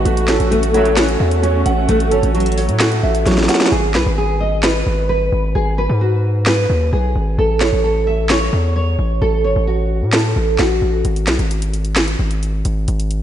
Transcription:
Already playing: F#4
0.05 A1 A3 C#4 F#4, closed hi-hat
0.17 closed hi-hat
0.28 C#4 A4, snare, clap, closed hi-hat
0.40 A1, closed hi-hat
0.51 A3 F#4, closed hi-hat
0.63 closed hi-hat
0.74 C#2 A2 F#3 E4 C#5, closed hi-hat
0.85 closed hi-hat
0.96 C#4 F#4, snare, clap, closed hi-hat
1.08 closed hi-hat
1.20 E2 E5
1.31 closed hi-hat
1.43 C#4 F#4, closed hi-hat
1.66 A1 F#5, closed hi-hat
1.89 A1 A3 F#4, closed hi-hat
2.00 closed hi-hat
2.11 G#1 C#4 A4, closed hi-hat
2.23 A1, closed hi-hat
2.34 F#3 F#4, closed hi-hat
2.40 closed hi-hat
2.46 closed hi-hat
2.52 closed hi-hat
2.57 C#5, open hi-hat
2.69 A2, closed hi-hat
2.80 A3 F#4, snare, clap, closed hi-hat
2.92 closed hi-hat
3.03 A1 E5
3.15 closed hi-hat
3.26 A1 F#3 F#4, snare, closed hi-hat
3.32 snare
3.38 snare
3.43 snare
3.49 F#5, snare, closed hi-hat
3.55 snare
3.60 snare
3.66 snare
3.72 G#1 G#4
3.94 B1 B4, snare, clap
4.06 G#1
4.18 G#4
4.40 D#5
4.63 B4, snare, clap
4.86 G#1
5.09 B4
5.32 G#1
5.55 G#1 G#4
5.78 B4
5.89 G#2
6.01 F#4
6.46 B4, snare, clap
6.70 D#2
6.93 B1 G#4
7.15 G#1
7.38 A1 A4
7.60 C#5, snare, clap
7.73 A1
7.84 A4
8.07 E5
8.29 C#5, snare, clap
8.53 E2
8.76 C#5
8.99 A1
9.22 A1 A4
9.44 G#1 C#5
9.56 A1
9.67 F#4
10.02 A2
10.12 A4, snare, clap
10.36 A1
10.58 A1 F#4, snare, clap
10.82 A1
11.05 G#1, closed hi-hat
11.16 closed hi-hat
11.27 B1, snare, clap, closed hi-hat
11.39 G#1, closed hi-hat
11.51 closed hi-hat
11.62 closed hi-hat
11.73 closed hi-hat
11.85 closed hi-hat
11.96 snare, clap, closed hi-hat
12.08 closed hi-hat
12.19 G#1
12.31 closed hi-hat
12.43 closed hi-hat
12.65 G#1, closed hi-hat
12.88 G#1, closed hi-hat
13.00 closed hi-hat
13.11 closed hi-hat

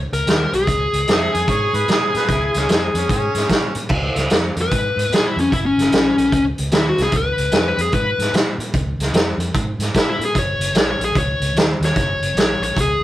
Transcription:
0.12 C#2 A#4, closed hi-hat
0.26 D#2, snare, closed hi-hat
0.53 B1 G#4, closed hi-hat
0.67 C#2, kick, closed hi-hat
0.93 C#2, closed hi-hat
1.07 F2 E5, snare, closed hi-hat
1.34 F2 G#5, closed hi-hat
1.47 G#2 C#5, kick, closed hi-hat
1.73 G#2 B4, closed hi-hat
1.88 A#2 G#4, snare, closed hi-hat
2.14 A#2 B4, snare, closed hi-hat
2.28 C#2 E4, kick, snare, closed hi-hat
2.54 C#2 C#4, snare, closed hi-hat
2.69 F2, snare, closed hi-hat
2.94 F2 C#4, closed hi-hat
3.09 G#2 C#4, kick, closed hi-hat
3.35 G#2, snare, closed hi-hat
3.49 A#2, kick, snare, closed hi-hat
3.75 A#2, closed hi-hat
3.89 C#2, kick, crash
4.16 C#2, snare, closed hi-hat
4.30 F2, snare, closed hi-hat
4.56 F2, closed hi-hat
4.61 B4
4.71 G#2, kick, closed hi-hat
4.96 G#2, closed hi-hat
5.10 A#2, snare, closed hi-hat
5.14 G#4
5.26 E4
5.36 F2, closed hi-hat
5.40 C#4
5.52 F#1 E4, kick, closed hi-hat
5.66 C#4
5.77 F#1, snare, closed hi-hat
5.90 A#1, snare, closed hi-hat
6.17 A#1, closed hi-hat
6.32 C#2, kick, closed hi-hat
6.58 C#2, closed hi-hat
6.71 D#2 E4, snare, closed hi-hat
6.89 F#4
6.98 C2, snare, closed hi-hat
7.03 G#4
7.12 C#2, kick, closed hi-hat
7.17 B4
7.37 C#2, closed hi-hat
7.52 F2, snare, closed hi-hat
7.68 B4
7.78 F2 G#4, closed hi-hat
7.92 G#2 B4, kick, closed hi-hat
8.18 G#2, snare, closed hi-hat
8.33 A#2, snare, closed hi-hat
8.58 A#2, closed hi-hat
8.74 C#2, kick, closed hi-hat
8.99 C#2, snare, closed hi-hat
9.13 F2, snare, closed hi-hat
9.38 F2, closed hi-hat
9.54 G#2, kick, closed hi-hat
9.78 G#2, snare, closed hi-hat
9.94 A#2 E4, kick, snare, closed hi-hat
10.10 E4
10.19 A#2, closed hi-hat
10.25 G#4
10.35 F#1, kick, closed hi-hat
10.39 C#5
10.59 F#1, closed hi-hat
10.74 A#1, snare, closed hi-hat
10.91 C#5
10.99 A#1, closed hi-hat
11.04 G#4
11.15 C#2 C#5, kick, closed hi-hat
11.40 C#2, closed hi-hat
11.54 D#2, closed hi-hat
11.58 snare
11.80 D#2, snare, closed hi-hat
11.85 C#5
11.96 F#1, kick, snare, closed hi-hat
12.20 F#1, closed hi-hat
12.34 A#1, closed hi-hat
12.38 C#5, snare
12.60 A#1 C#5, closed hi-hat
12.76 C#2, kick, closed hi-hat
12.81 G#4
13.00 C#2

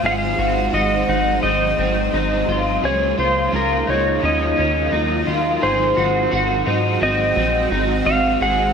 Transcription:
Already playing: G#3 C5
0.03 G#1 G#2 D#3 F#3 C4 G#4 F5
0.07 D#4
0.11 F#5
0.18 F5
0.38 G#1 C4 D#4 F#4
0.43 F#3
0.72 G#1 G#2 D#3 F#3 C4 D#4 F#4 D#5
1.08 G#1 C4 D#4 F#5
1.13 F#3
1.42 G#1 D#3 F#3 C4 D#5
1.47 D#4
1.78 G#1 C4 D#4
1.82 F#3
2.13 G#1 G#2 D#3 F#3 C4 D#4
2.47 G#1 C4 D#4 F4
2.52 F#3
2.83 C#2 C#3 G#3 A#3 D#4 F4 G#4 C#5
3.17 C#2 A#3 F4 C5
3.22 G#3
3.52 C#2 C#3 G#3 A#3 F4 A#4
3.87 C#2 A#3 D#4 F4 C#5
3.92 G#3
4.21 D#2 D#3 F#3 A#3 C#4 D#4 F4 A#4
4.25 F4 D#5
4.56 D#2 A#3 C#4 F4
4.61 F#3
4.91 D#2 D#3 F#3 A#3 D#4 F4
5.25 D#2 A#3 F4
5.31 F#3
5.61 G#1 G#2 D#3 F#3 G#3 C4 F#4 G#4 C5
5.95 G#1 C4 F#4
5.99 F#3
6.30 G#1 G#2 D#3 F#3 C4 F#4
6.65 G#2 C4 D#4 F#4
6.70 F#3
7.00 G#1 D#3 F#3 C4 D#5
7.05 F#4
7.34 A#1 C4 F#4
7.39 F#3
7.70 G#1 G#2 D#3 F#3 C4 D#4 F#4
8.05 G#1 C4 F#4 F5
8.10 F#3
8.40 G#1 G#2 D#3 F#3 C4 F#4 G#4 F#5

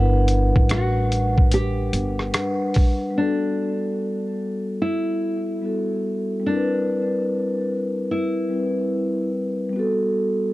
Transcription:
Already playing: G1 G3 D4 E4 F#5
0.00 B4
0.28 closed hi-hat
0.56 A1, kick
0.69 F#4, cross-stick, closed hi-hat
1.12 closed hi-hat
1.38 kick
1.51 G4, closed hi-hat
1.93 G1, closed hi-hat
2.19 cross-stick
2.32 G3 D4 F#5, cross-stick, closed hi-hat
2.36 B4
2.74 kick, open hi-hat
3.11 G3 B3
3.17 D4 F#4 A4
4.82 E4
5.62 G3 B3 F#4
5.66 A4
6.40 G3 C4
6.46 D4 E4 A#4
6.55 B4
8.11 E4
8.49 G3 C4 E4
8.54 B4
9.70 G3 B3
9.76 F#4 A4

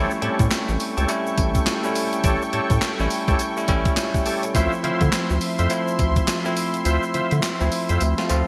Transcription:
Already playing: G3 A3 C#4 E4 G4 A4 C#5 G5 C#6
0.10 shaker
0.22 A2 G3 A3 C4 G4 A4 C#5, closed hi-hat
0.29 C#4
0.39 A2, kick, closed hi-hat, shaker
0.51 snare, clap, closed hi-hat, tambourine, shaker
0.68 A1, shaker
0.80 open hi-hat, tambourine
0.97 C#2 G4 A4 C#5, closed hi-hat, shaker
1.08 G3 A3 C#4 E4, closed hi-hat, tambourine, shaker
1.27 shaker
1.38 A1, kick, closed hi-hat, tambourine
1.55 kick, closed hi-hat, shaker
1.66 snare, clap, closed hi-hat, tambourine, shaker
1.83 G3 A3 C#4 E4, shaker
1.95 open hi-hat, tambourine, shaker
2.13 closed hi-hat, shaker
2.24 A1 G4 A4 C#5, kick, closed hi-hat, tambourine, shaker
2.42 shaker
2.53 A2 G4 A4 C#5, closed hi-hat
2.70 A2, kick, closed hi-hat, shaker
2.81 snare, clap, closed hi-hat, tambourine, shaker
2.99 A1 G3 A3 C#4 E4, shaker
3.10 open hi-hat, tambourine
3.28 C#2 G4 A4 C#5, kick, closed hi-hat, shaker
3.39 closed hi-hat, tambourine, shaker
3.57 G3 A3 C#4 E4, shaker
3.68 A1 G3 A3 C#4 E4, kick, closed hi-hat, tambourine
3.85 kick, closed hi-hat, shaker
3.97 snare, clap, closed hi-hat, tambourine, shaker
4.14 G4 E5, kick, shaker
4.26 E4 G4 A4 C#5, open hi-hat, tambourine, shaker
4.43 C#4 A4, closed hi-hat, shaker
4.54 D2 F3 A3 C4 E4 F4 C5 E5 C6, kick, closed hi-hat, tambourine, shaker
4.72 shaker
4.83 D3 F3 A3 C4 E4 F4 C5 E5, closed hi-hat
5.01 D3, kick, closed hi-hat, shaker
5.12 snare, clap, closed hi-hat, tambourine, shaker
5.30 D2, shaker
5.41 open hi-hat, tambourine
5.58 F2 F4 C5 E5, closed hi-hat, shaker
5.70 F3 A3 C4 E4, closed hi-hat, tambourine, shaker
5.88 shaker
5.99 D2, kick, closed hi-hat, tambourine
6.16 kick, closed hi-hat, shaker
6.28 snare, clap, closed hi-hat, tambourine, shaker
6.44 F3 A3 C4 E4, shaker
6.56 open hi-hat, tambourine, shaker
6.74 closed hi-hat, shaker
6.85 D2 F4 C5 E5, closed hi-hat, tambourine, shaker
7.03 shaker
7.14 D3 F4 C5 E5, closed hi-hat, shaker
7.31 D3, closed hi-hat, shaker
7.43 snare, clap, closed hi-hat, tambourine, shaker
7.60 D2 F3 A3 C4 E4, shaker
7.72 open hi-hat, tambourine
7.89 F2 F4 C5 E5, closed hi-hat, shaker
8.00 D2, closed hi-hat, tambourine, shaker
8.18 F3 A3 C4 F4, snare, shaker
8.29 D2 F3 A3 C4 F4, closed hi-hat, tambourine, shaker

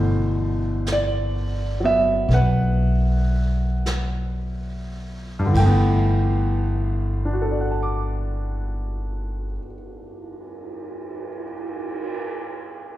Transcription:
Already playing: G1 B2 D3 E3 A3 C5 D5
0.86 brush sweep, snare, hi-hat pedal
0.92 D5
1.80 F#3 B3
1.85 E5
2.28 B1, brush sweep, snare
2.33 B4 F#5
3.86 brush sweep, snare, hi-hat pedal
5.39 G2
5.46 D3
5.52 G1 E3, kick, crash
5.57 A3 G5
5.66 B3
6.71 cymbal swell
7.25 D4
7.33 F#4
7.42 A4
7.51 D5
7.61 F#5
7.71 A5
7.83 D6

